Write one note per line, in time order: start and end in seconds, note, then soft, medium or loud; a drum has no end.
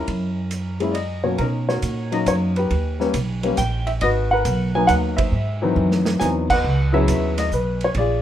0.00 0.80 C#4 soft
0.00 0.81 E4 soft
0.00 1.21 A#4 medium
0.08 1.35 F#2 medium
0.08 kick soft
0.08 ride medium
0.51 hi-hat pedal medium
0.51 ride medium
0.80 0.93 G#3 medium
0.80 0.94 A#3 medium
0.80 0.94 C#4 medium
0.80 0.95 E4 medium
0.80 ride soft
0.92 0.95 D5 medium
0.92 1.25 D#5 medium
0.92 ride medium
1.24 1.37 B2 medium
1.24 1.37 F#3 soft
1.24 1.38 A#3 soft
1.24 1.38 C#4 soft
1.24 1.38 F#4 medium
1.24 1.37 C#5 medium
1.38 1.81 B2 medium
1.38 2.10 C#4 medium
1.38 2.09 D#4 medium
1.38 1.45 A#4 medium
1.38 kick soft
1.38 ride soft
1.69 2.24 F#4 medium
1.69 2.24 A#4 medium
1.69 2.14 C#5 medium
1.69 snare soft
1.82 2.25 A#2 medium
1.82 kick soft
1.82 hi-hat pedal medium
1.82 ride medium
2.12 2.67 F#3 medium
2.12 2.67 A#3 medium
2.12 2.68 C#4 medium
2.12 2.68 D#4 medium
2.12 2.27 D#5 medium
2.12 ride soft
2.26 2.69 F#2 medium
2.26 2.34 C#5 medium
2.26 kick soft
2.26 hi-hat pedal medium
2.26 ride medium
2.56 3.55 G4 medium
2.56 3.61 B4 medium
2.56 ride soft
2.70 3.13 D#2 medium
2.70 kick soft
2.70 ride medium
3.00 3.12 G3 medium
3.00 3.13 A#3 medium
3.00 3.13 B3 medium
3.00 3.13 C#4 medium
3.00 snare soft
3.14 3.56 B1 medium
3.14 kick soft
3.14 hi-hat pedal soft
3.14 ride medium
3.43 3.56 G3 medium
3.43 3.56 A#3 medium
3.43 3.56 B3 medium
3.43 3.57 C#4 medium
3.43 ride soft
3.57 4.00 A#1 medium
3.57 3.88 G5 medium
3.57 kick soft
3.57 hi-hat pedal medium
3.57 ride medium
3.87 3.92 E5 medium
3.87 ride soft
4.01 4.44 G#1 medium
4.01 4.71 F#4 medium
4.01 4.31 B4 medium
4.01 4.08 D#5 loud
4.01 kick soft
4.01 ride medium
4.31 4.86 A#4 medium
4.31 4.86 B4 medium
4.31 4.72 F#5 medium
4.45 4.88 B1 medium
4.45 kick soft
4.45 hi-hat pedal medium
4.45 ride medium
4.75 5.30 F#3 medium
4.75 5.30 A#3 medium
4.75 5.30 B3 medium
4.75 5.31 D#4 medium
4.75 4.89 G#5 medium
4.87 5.31 D#2 medium
4.87 4.94 F#5 medium
4.87 kick soft
4.87 hi-hat pedal medium
4.87 ride medium
5.17 6.16 C5 medium
5.17 6.22 E5 medium
5.17 kick medium
5.17 ride medium
5.32 5.75 G#2 medium
5.62 6.18 D#3 medium
5.62 6.17 E3 medium
5.62 6.17 F#3 medium
5.62 6.18 C4 medium
5.76 6.18 F#2 medium
5.91 snare medium
6.06 snare medium
6.20 6.63 E2 medium
6.20 6.46 E3 medium
6.20 6.46 F#3 medium
6.20 6.47 C4 medium
6.20 6.47 D#4 medium
6.20 6.26 G#5 medium
6.20 snare medium
6.20 hi-hat pedal medium
6.50 6.94 B4 medium
6.50 7.05 D#5 medium
6.50 6.90 F#5 medium
6.50 kick medium
6.50 crash medium
6.64 7.06 C#2 medium
6.64 kick soft
6.92 7.48 F#3 medium
6.92 7.48 B3 medium
6.92 7.49 C#4 medium
6.92 7.48 E4 medium
6.92 7.48 G#4 medium
6.92 7.48 B4 medium
6.92 7.39 E5 medium
7.08 7.50 D#2 medium
7.08 kick soft
7.08 hi-hat pedal medium
7.08 ride medium
7.38 7.52 D#5 medium
7.38 snare soft
7.38 ride medium
7.51 7.94 B1 medium
7.51 7.83 B4 medium
7.51 kick soft
7.51 hi-hat pedal medium
7.81 7.96 C#5 medium
7.81 ride soft
7.95 8.22 A#1 medium
7.95 8.22 D5 medium
7.95 kick soft
7.95 ride medium
7.99 8.22 F4 medium
7.99 8.22 G#4 medium